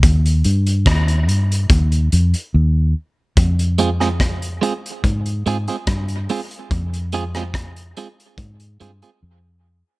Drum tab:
HH |xxxxxxxxxxxx----|xxxxxxxxxxxxxxox|xxxxxxxxxxxx----|
SD |----r-----------|---rr-------r---|---rr-----------|
BD |o---o---o-------|o---o---o---o---|o---o---o-------|